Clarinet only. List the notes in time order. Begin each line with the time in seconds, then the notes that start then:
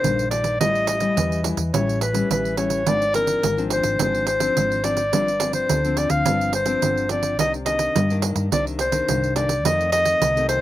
Already playing: C5
0.31 D5
0.60 D#5
0.89 D#5
1.74 C#5
2.02 B4
2.32 B4
2.58 C#5
2.88 D5
3.15 A#4
3.73 C5
4.03 C5
4.28 C5
4.84 D5
5.54 C5
5.98 D5
6.10 F5
6.55 C5
7.11 D5
7.40 D#5
7.66 D#5
8.53 D5
8.80 C5
9.36 D5
9.66 D#5
9.92 D#5
10.49 C5